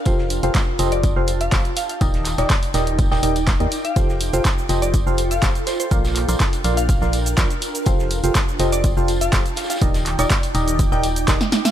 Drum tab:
HH |x---o-x-x---o-x-x---o-x-x-x-o-x-|x-x-o-x-x-o-o-x-x---o-x-x-x-o-x-|x---o-x-x---o-x-x---o-x-x-x-o-x-|x---o-x-x-o-o-x-x---o-x-x-x-o-x-|
TB |x---x---x---x---x---x---x---x---|x---x---x---x---x-x---x-x---x---|x---x---x---x---x---x---x---x---|x-x---x-x---x---x---x---x---x---|
SH |--------------------------------|--------------------------------|x-x---x-x-x---x-x-x---x-x-x---x-|x-x---x-x-x---x-x-x---x-x-x---x-|
CP |--------x---------------x-------|----x---x---------------x-------|--------x---------------x-------|----x---x---------------x-------|
SD |--o-----o---------------o-------|--o---o-o---o-----o-----o-------|--o-----o---------------o---o---|--o-----o---------o-----o-------|
BD |o-------o-------o-------o-------|o-------o-------o-------o-------|o-------o-------o-------o-------|o-------o-------o-------o-------|

HH |x---o-x-x---o-x-x---o-x-x-x-o-x-|x-x-o-x-x-o-o-x-x---o-x-x-x-o-x-|
TB |x---x---x---x---x---x---x---xxxx|x-x---x-x---x---x---x---x---x-x-|
SH |x-x---x-x-x---x-x-x---x-x-x---x-|x-x---x-x-x---x-x-x---x-x-x---x-|
CP |--------x---------------x-------|----x---x---------------x-------|
SD |--o-----o---------------o---oooo|--o-----o---------o-----o-o-o-o-|
BD |o-------o-------o-------o-------|o-------o-------o-------o-------|